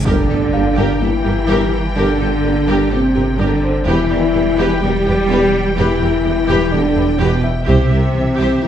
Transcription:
0.05 sub bass G1, tuba G1, double bass section G2, cello section D3, synth pluck G3, french horn section D4, viola section G4, violin section A#4 G5, impact
0.29 tuba G1, double bass section G2, synth pluck D4, viola section G4, violin section A4
0.53 tuba G1, double bass section G2, synth pluck A#3, viola section G4, violin section A#4, grand piano F5
0.77 tuba G1, double bass section G2, synth pluck G3, viola section G4, violin section A#4
1.00 tuba G1, double bass section G2, cello section E3, synth pluck A#3, french horn section E4, viola section G4, violin section A4
1.24 tuba G1, double bass section G2, viola section G4, synth pluck G4, violin section A#4
1.48 tuba G1, double bass section G2, synth pluck G3, viola section G4, violin section A#4
1.95 tuba G1, double bass section G2, cello section D3, synth pluck G3, french horn section D4, viola section G4, violin section A#4
2.19 tuba G1, double bass section G2, synth pluck D4, viola section G4, violin section A4
2.43 tuba G1, double bass section G2, synth pluck A#3, viola section G4, violin section A#4
2.67 tuba G1, double bass section G2, synth pluck G3, viola section G4, violin section A#4
2.90 tuba G1, double bass section G2, cello section C3, synth pluck A#3, french horn section C4, viola section G4, violin section A4
3.15 tuba G1, double bass section G2, synth pluck G4, viola section G4, violin section A#4
3.38 tuba G1, double bass section G2, cello section D3, synth pluck G3, french horn section D4, viola section G4, violin section A#4
3.63 grand piano C5
3.85 tuba E1, sub bass E1, double bass section E2, cello section E3, synth pluck E3, french horn section E4, viola section G4, violin section B4 G5
4.10 tuba E1, double bass section E2, synth pluck B3, viola section G4, violin section A#4, grand piano D5
4.33 tuba E1, double bass section E2, synth pluck G3, viola section G4, violin section B4
4.57 tuba E1, double bass section E2, synth pluck E3, viola section G4, violin section B4
4.81 tuba E1, double bass section E2, synth pluck G3, cello section G3, french horn section G4, viola section G4, violin section A#4
5.06 tuba E1, double bass section E2, synth pluck E4, viola section G4, violin section B4
5.29 tuba E1, double bass section E2, synth pluck E3, viola section G4, violin section B4
5.76 tuba E1, double bass section E2, cello section E3, synth pluck E3, french horn section E4, viola section G4, violin section B4
6.00 tuba E1, double bass section E2, synth pluck B3, viola section G4, violin section A#4
6.23 tuba E1, double bass section E2, synth pluck G3, viola section G4, violin section B4
6.48 tuba E1, double bass section E2, synth pluck E3, viola section G4, violin section B4
6.71 tuba E1, double bass section E2, cello section D3, synth pluck G3, french horn section D4, viola section G4, violin section A#4
6.95 tuba E1, double bass section E2, synth pluck E4, viola section G4, violin section B4
7.19 tuba E1, double bass section E2, cello section B2, synth pluck E3, french horn section B3, viola section G4, violin section B4
7.44 grand piano E4 E5
7.67 double bass section C2, sub bass C2, tuba C2, cello section C3, synth pluck C3, french horn section C4, viola section G4, violin section C5 E5
7.91 double bass section C2, tuba C2, synth pluck G3, viola section G4, violin section A#4
8.15 double bass section C2, tuba C2, synth pluck E3, viola section G4, violin section C5
8.38 double bass section C2, tuba C2, synth pluck C3, viola section G4, violin section C5
8.62 tuba C2, double bass section C2, synth pluck E3, cello section E3, french horn section E4, viola section G4, violin section A#4

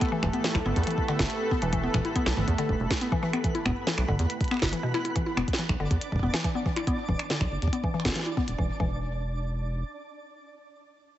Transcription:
Already playing: analog synth pad A3 E4 G4 A4, synth texture B3 B5
0.01 synth arpeggio sound B3, finger snap, kick, closed hi-hat
0.05 finger snap
0.09 synth arpeggio sound E3, finger snap
0.23 analog synth bass E1, synth arpeggio sound E3, finger snap, kick, mid tom
0.34 synth arpeggio sound B3, closed hi-hat
0.44 synth arpeggio sound E3, snare, closed hi-hat
0.55 analog synth bass B1, synth arpeggio sound E4, finger snap, kick
0.66 analog synth bass G1, synth arpeggio sound B3, mid tom
0.76 analog synth bass E2, kick, closed hi-hat
0.83 closed hi-hat
0.87 synth arpeggio sound E3, closed hi-hat
0.91 closed hi-hat
0.98 kick
1.08 synth arpeggio sound D3, finger snap
1.19 analog synth bass G1, kick, snare, closed hi-hat
1.30 closed hi-hat
1.51 synth arpeggio sound B3, kick
1.62 analog synth bass E1, synth arpeggio sound E3, closed hi-hat
1.73 synth arpeggio sound E3, kick, closed hi-hat
1.83 synth arpeggio sound B3
1.94 analog synth bass E1, synth arpeggio sound E3, finger snap, kick, mid tom
2.05 synth arpeggio sound E4, closed hi-hat
2.16 synth arpeggio sound B3, kick, closed hi-hat
2.26 analog synth bass B1, finger snap, snare
2.37 analog synth bass G1, synth arpeggio sound E3, mid tom
2.48 analog synth bass E2, kick, closed hi-hat
2.58 synth arpeggio sound D3, closed hi-hat
2.69 analog synth bass E1, kick
2.80 analog synth bass E1
2.91 kick, snare, closed hi-hat
3.01 synth arpeggio sound B3, closed hi-hat
3.12 synth arpeggio sound E3, kick
3.23 synth arpeggio sound E3
3.33 synth arpeggio sound B3, finger snap, closed hi-hat
3.44 synth arpeggio sound E3, kick, closed hi-hat
3.55 synth arpeggio sound E4, closed hi-hat
3.66 analog synth bass E1, synth arpeggio sound B3, finger snap, kick, mid tom
3.87 synth arpeggio sound E3, snare, closed hi-hat
3.98 analog synth bass B1, finger snap, closed hi-hat
4.08 analog synth bass G1, synth arpeggio sound D3, kick, mid tom
4.19 analog synth bass E2, closed hi-hat
4.30 closed hi-hat
4.41 kick, closed hi-hat
4.44 closed hi-hat
4.48 synth arpeggio sound B3, finger snap, closed hi-hat
4.54 finger snap
4.57 finger snap
4.59 synth arpeggio sound E4, finger snap, kick
4.62 analog synth bass G1, finger snap, snare, closed hi-hat
4.65 finger snap
4.67 finger snap
4.70 synth arpeggio sound E3, finger snap, closed hi-hat
4.83 synth arpeggio sound B2
4.94 synth arpeggio sound E4, finger snap
5.05 synth arpeggio sound E4, closed hi-hat
5.15 synth arpeggio sound E3, synth texture D4 D5, kick, closed hi-hat
5.26 synth arpeggio sound E4
5.37 analog synth bass E1, synth arpeggio sound B3, finger snap
5.48 kick, closed hi-hat
5.53 snare
5.59 synth arpeggio sound E3, closed hi-hat
5.69 analog synth bass B1, finger snap, kick
5.80 analog synth bass G1, synth arpeggio sound D3
5.91 analog synth bass E2, kick, closed hi-hat
6.01 closed hi-hat
6.12 analog synth bass E1, kick
6.16 kick
6.19 kick
6.23 analog synth bass E1, synth arpeggio sound B3, kick
6.26 kick
6.30 synth arpeggio sound E3, kick, snare, closed hi-hat
6.44 synth arpeggio sound E3, kick, closed hi-hat
6.55 synth arpeggio sound B3
6.66 synth arpeggio sound E3, kick
6.76 synth arpeggio sound E4, finger snap, closed hi-hat
6.87 synth arpeggio sound B3, kick, closed hi-hat
7.08 analog synth bass E1, synth arpeggio sound E3, kick
7.19 finger snap, closed hi-hat
7.30 synth arpeggio sound D3, snare, closed hi-hat
7.41 analog synth bass B1, finger snap, kick
7.52 analog synth bass G1
7.62 analog synth bass E2, closed hi-hat
7.68 kick
7.73 synth arpeggio sound B3, closed hi-hat
7.83 synth arpeggio sound E3, kick
7.94 synth arpeggio sound E3
8.00 finger snap
8.05 analog synth bass G1, synth arpeggio sound B3, kick, snare, closed hi-hat
8.09 snare
8.12 synth arpeggio sound E3, snare
8.16 snare, closed hi-hat
8.19 snare
8.23 synth arpeggio sound E4, snare
8.37 synth arpeggio sound B3, kick
8.48 analog synth bass E1, closed hi-hat
8.58 analog synth bass E1, synth arpeggio sound E3, kick
8.80 analog synth bass E1, synth arpeggio sound E3, kick

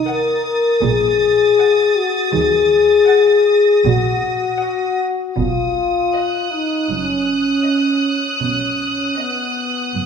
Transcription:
Already playing: violin section D#6
0.06 french horn section A#4, violin section F#5 A6
0.81 double bass section A#1, cello section A#2, french horn section G#4
1.58 violin section F#5
1.96 french horn section F#4
2.33 double bass section D#2, cello section D#3, french horn section G#4
3.09 violin section F#5
3.74 violin section A#6
3.85 double bass section A#1, cello section A#2, french horn section F#4
4.61 violin section F#5
5.37 double bass section B1, cello section B2, french horn section F4, violin section D#6, taiko
6.14 violin section D#5 F#6
6.52 french horn section D#4
6.89 double bass section F#1, cello section F#2, french horn section C#4
7.64 violin section D#5
8.41 double bass section B1, cello section B2, french horn section C#4
9.17 french horn section B3, violin section D#5
9.93 double bass section F#1, cello section F#2

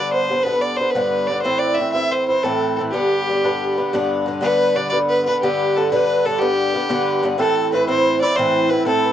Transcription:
Already playing: bouzouki G2 D3 B3 D4, fiddle D5, vibraphone D5
0.13 fiddle C5, vibraphone C5
0.29 bouzouki G2 D3 B3 D4
0.43 bouzouki D3 B3 D4, fiddle B4
0.47 bouzouki G2
0.61 fiddle D5, vibraphone D5
0.77 bouzouki D4, fiddle C5
0.81 bouzouki D3 B3, vibraphone C5
0.90 fiddle B4
0.95 bouzouki G2 D3 B3 D4, vibraphone B4
1.27 bouzouki G2 D3, fiddle D5
1.31 bouzouki B3 D4
1.42 bouzouki A2 E3 C4 E4, fiddle C5
1.47 vibraphone C5
1.59 fiddle D5
1.66 vibraphone D5
1.74 bouzouki A2, fiddle E5
1.79 bouzouki E3 C4 E4, vibraphone E5
1.92 bouzouki A2 E3 C4 E4, fiddle E5, vibraphone E5
2.11 fiddle C5, vibraphone C5
2.27 bouzouki E3 C4 E4, vibraphone C5, fiddle C5
2.44 bouzouki A2 E3 C4 E4, fiddle A4, vibraphone A4
2.79 bouzouki A2 E3 C4 E4
2.92 bouzouki G2 D3 B3 D4, fiddle G4, vibraphone G4
3.30 bouzouki G2 D3 B3 D4
3.44 bouzouki G2 D3 B3 D4
3.78 bouzouki D3 B3 D4
3.93 bouzouki G2 D3 B3 D4
4.26 bouzouki G2 D3 B3 D4
4.41 bouzouki G2 D3 B3 D4, vibraphone B4, fiddle B4
4.76 bouzouki G2 D3 B3 D4, fiddle D5, vibraphone D5
4.89 bouzouki D3 B3 D4, fiddle D5
4.93 bouzouki G2, vibraphone D5
5.09 fiddle B4, vibraphone B4
5.26 bouzouki B3 D4, fiddle B4
5.30 bouzouki D3
5.42 bouzouki G2 D3 B3 D4, fiddle G4, vibraphone G4
5.76 bouzouki G2 D3 B3 D4, fiddle A4
5.92 bouzouki G2 D3 B3 D4, fiddle B4, vibraphone B4
6.26 bouzouki G2 D3 B3 D4, fiddle A4, vibraphone A4
6.39 bouzouki D3 B3 D4, fiddle G4, vibraphone G4
6.43 bouzouki G2
6.74 bouzouki D3 B3 D4
6.89 bouzouki G2 D3 B3 D4
7.23 bouzouki G2 D3 B3 D4
7.38 bouzouki A2 E3 C4 E4, vibraphone A4, fiddle A4
7.72 bouzouki A2 E3 C4 E4, fiddle B4, vibraphone B4
7.88 bouzouki A2 E3 C4 E4, fiddle C5, vibraphone C5
8.21 bouzouki E3 C4 E4, fiddle D5, vibraphone D5
8.36 bouzouki A2 E3 C4 E4, fiddle C5, vibraphone C5
8.69 bouzouki A2 E3 C4 E4, fiddle B4, vibraphone B4
8.85 bouzouki A2 E3 C4 E4, fiddle A4, vibraphone A4
9.05 vibraphone B4

